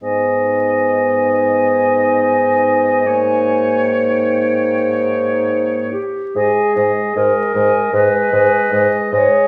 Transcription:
X:1
M:4/4
L:1/8
Q:1/4=76
K:G#m
V:1 name="Flute"
g8- | g2 =g4- g z | g g g g g g g g |]
V:2 name="Oboe"
d8 | c6- c z | d d d d d d d d |]
V:3 name="Clarinet"
D8- | D6- D =G | G2 A2 B3 c |]
V:4 name="French horn" clef=bass
B,8 | A,6- A, z | G, G, G, G, G, G, G, G, |]
V:5 name="Bassoon" clef=bass
G,,8- | G,,6- G,, z | G,, G,, G,, G,, G,, G,, G,, G,, |]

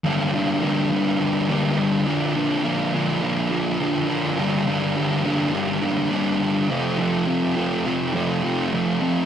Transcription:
X:1
M:4/4
L:1/8
Q:1/4=104
K:Gm
V:1 name="Distorted electric guitar" clef=bass
[G,,D,G,B,D] [G,,D,G,B,D] [G,,D,G,B,D] [G,,D,G,B,D] [G,,D,G,B,D] [G,,D,G,B,D] [G,,D,G,B,D] [B,,D,F,B,D] | [B,,D,F,B,D] [B,,D,F,B,D] [B,,D,F,B,D] [B,,D,F,B,D] [B,,D,F,B,D] [B,,D,F,B,D] [B,,D,F,B,D] [G,,D,G,B,D] | [G,,D,G,B,D] [G,,D,G,B,D] [G,,D,G,B,D] [G,,D,G,B,D] [G,,D,G,B,D] [G,,D,G,B,D] [G,,D,G,B,D] [F,,C,F,A,C] | [F,,C,F,A,C] [F,,C,F,A,C] [F,,C,F,A,C] [F,,C,F,A,C] [F,,C,F,A,C] [F,,C,F,A,C] [F,,C,F,A,C] [F,,C,F,A,C] |]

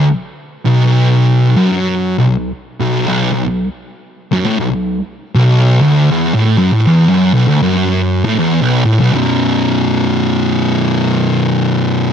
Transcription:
X:1
M:4/4
L:1/16
Q:"Swing" 1/4=79
K:Bm
V:1 name="Distorted electric guitar" clef=bass
z3 B,,,4- B,,, F,,3 B,,,2 z B,,,2 | B,,, B,,,2 z3 F,, A,, B,,,2 z2 B,,,2 D,,2 | E,, A,, F,, A,, E,, F,, B,,, D,, F,,3 A,, E,, B,,, A,, B,,, | [B,,,F,,B,,]16 |]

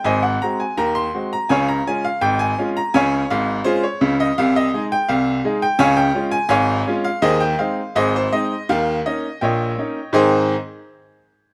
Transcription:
X:1
M:2/4
L:1/16
Q:1/4=83
K:Ab
V:1 name="Upright piano"
[cea] _g b a b c'2 b | [dfa] b a f g a2 b | [dfa]2 f2 [FAc] d2 e | f e2 g f3 g |
[dfa] g2 a [dfa]3 f | [Ace] g f2 [Ace] c e2 | f2 e2 [deg]4 | [A,,E,CEAcc']2 z6 |]
V:2 name="Upright piano" clef=bass
[A,,,A,,]2 [A,C_G]2 [E,,E,]2 [A,CG]2 | [D,,D,]2 [A,DF]2 [A,,,A,,]2 [A,DF]2 | [D,,D,]2 [A,,,A,,]2 [A,D]2 [D,,D,]2 | [C,,C,]2 [A,EA]2 [C,,C,]2 [A,EA]2 |
[D,,D,]2 [A,DF]2 [A,,,A,,]2 [A,DF]2 | [E,,E,]2 [A,CE]2 [A,,,A,,]2 [A,CE]2 | [E,,E,]2 [B,DE]2 [B,,,B,,]2 [B,DE]2 | z8 |]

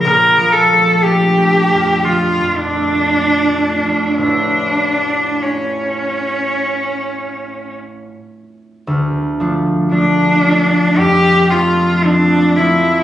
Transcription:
X:1
M:4/4
L:1/8
Q:1/4=56
K:Dm
V:1 name="Cello"
B A G2 F D3 | D2 ^C4 z2 | z2 D2 G F D E |]
V:2 name="Harp"
(3[B,,,F,B,] F, A, (3D A, F,, (3F, F,, A, (3D A, F,, | [A,,,A,E]8 | D,, [F,A,D] [F,A,D] [F,A,D] F,, [F,A,C] [F,A,C] [F,A,C] |]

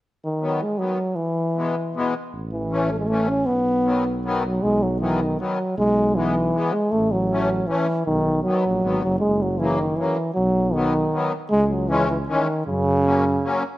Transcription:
X:1
M:3/4
L:1/16
Q:"Swing" 1/4=156
K:B
V:1 name="Accordion" clef=bass
z4 [D,F,B,]2 z2 [D,F,B,]2 z2 | z4 [B,,E,G,B,]2 z2 [B,,E,G,B,]2 z2 | z4 [E,=A,C]2 z2 [E,A,C]2 z2 | z4 [D,F,B,]2 z2 [D,F,B,]2 z2 |
z4 [D,F,B,]2 z2 [D,F,B,]2 z2 | z4 [E,G,B,]2 z2 [E,G,B,]2 z2 | z4 [E,=A,C]2 z2 [E,A,C]2 z2 | z4 [D,F,B,]2 z2 [D,F,B,]2 z2 |
z4 [C,F,A,]2 z2 [C,F,A,]2 z2 | z4 [D,F,B,]2 z2 [D,F,B,]2 z2 | z4 [E,G,C]2 z2 [E,G,C]2 z2 | z4 [F,A,C]2 z2 [F,A,C]2 z2 |]
V:2 name="Euphonium" clef=bass
z2 D,4 G,2 F,4 | E,8- E,2 z2 | z2 E,4 =A, G, A,2 C2 | B,8 z2 F,2 |
G,2 F,2 E,2 D,2 F,4 | G,4 E,6 G,2 | =A,2 F,6 E,4 | D,4 F,6 F,2 |
G,2 F,2 E,2 D,2 E,4 | F,4 D,6 z2 | G,3/2 G,/2 F,2 E,2 E,2 D,4 | C,8- C,2 z2 |]
V:3 name="Tuba" clef=bass
z12 | z12 | =A,,,12 | B,,,12 |
B,,,12 | B,,,12 | =A,,,12 | B,,,6 A,,,2 G,,,2 F,,,2 |
F,,,12 | B,,,12 | C,,12 | F,,12 |]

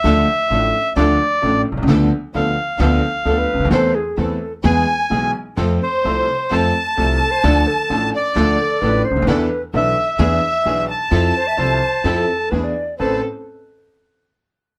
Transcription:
X:1
M:4/4
L:1/16
Q:1/4=130
K:Am
V:1 name="Bandoneon"
e8 d6 z2 | z4 f4 f8 | z8 ^g6 z2 | z2 c6 a8- |
a6 d8 z2 | z4 e4 e6 a2- | a12 z4 | a2 z12 z2 |]
V:2 name="Violin"
z16 | z16 | z8 ^g6 z2 | z2 c6 a8- |
a6 d8 z2 | z4 e4 e6 a2- | a12 z4 | A2 z12 z2 |]
V:3 name="Flute"
z16 | z12 A B3 | c2 ^G2 A3 z8 z | z12 A3 c |
d2 A3 z4 z A2 B2 c2 | B3 z12 z | z2 c e c4 A4 B d3 | c2 z12 z2 |]
V:4 name="String section"
[DFA]2 z2 [DFA]2 z2 [DFA]2 z2 [DFA]2 z2 | [B,DA]2 z2 [B,DA]2 z2 [B,DA]2 z2 [B,DA]2 z2 | [CEA]2 z2 [CEA]2 z2 [B,E^G]2 z2 [B,EG]2 z2 | [CFA]2 z2 [CFA]2 z2 [CFA]2 z2 [CFA]2 z2 |
[DFA]2 z2 [DFA]2 z2 [DFA]2 z2 [DFA]2 z2 | [DEA]2 z2 [DEA]2 z2 [DE^G]2 z2 [DEG]2 z2 | [EFA]2 z2 [EFA]2 z2 [EFA]2 z2 [DE^G]2 z2 | [CAB]2 z12 z2 |]
V:5 name="Grand piano" clef=bass
[D,,D,F,A,DA]2 z2 [A,,,A,,F,A,DA]2 z2 [D,,D,F,A,DA]2 z2 [A,,,A,,F,A,DA]2 z/2 B,,,/2 C,,/2 ^C,,/2 | [D,,D,F,B,DA]2 z2 [D,,D,F,B,DA]2 z2 [D,,D,F,B,DA]2 z2 [D,,D,F,B,DA]2 z/2 ^C,,/2 D,,/2 ^D,,/2 | [E,,E,A,CA]2 z2 [E,,E,A,CA]2 z2 [E,,E,^G,B,^G]2 z2 [B,,,B,,E,G,B,G]2 z2 | [F,,F,A,CA]2 z2 [C,,C,F,A,CA]2 z2 [F,,F,A,CA]2 z2 [C,,C,F,A,CA]2 z2 |
[D,,D,F,A,DA]2 z2 [A,,,A,,F,A,DA]2 z2 [D,,D,F,A,DA]2 z2 [A,,,A,,F,A,DA]2 z/2 ^C,,/2 D,,/2 ^D,,/2 | [E,,E,B,DA]2 z2 [B,,,B,,E,B,DA]2 z2 [E,,E,B,D^G]2 z2 [B,,,B,,E,B,DG]2 z2 | [F,,F,CEA]2 z2 [C,,C,F,CEA]2 z2 [F,,F,CEA]2 z2 [E,,E,B,D^G]2 z2 | [A,,,CAB]2 z12 z2 |]
V:6 name="Upright bass" clef=bass
D,,3/2 z2 z/2 A,,,3/2 z2 z/2 D,,3/2 z2 z/2 A,,,3/2 z B,,,/2 C,,/2 ^C,,/2 | D,,3/2 z2 z/2 D,,3/2 z2 z/2 D,,3/2 z2 z/2 D,,3/2 z ^C,,/2 D,,/2 ^D,,/2 | E,,3/2 z2 z/2 E,,3/2 z2 z/2 E,,3/2 z2 z/2 B,,,3/2 z2 z/2 | F,,3/2 z2 z/2 C,,3/2 z2 z/2 F,,3/2 z2 z/2 C,,3/2 z2 z/2 |
D,,3/2 z2 z/2 A,,,3/2 z2 z/2 D,,3/2 z2 z/2 A,,,3/2 z ^C,,/2 D,,/2 ^D,,/2 | E,,3/2 z2 z/2 B,,,3/2 z2 z/2 E,,3/2 z2 z/2 B,,,3/2 z2 z/2 | F,,3/2 z2 z/2 C,,3/2 z2 z/2 F,,3/2 z2 z/2 E,,3/2 z2 z/2 | A,,,2 z12 z2 |]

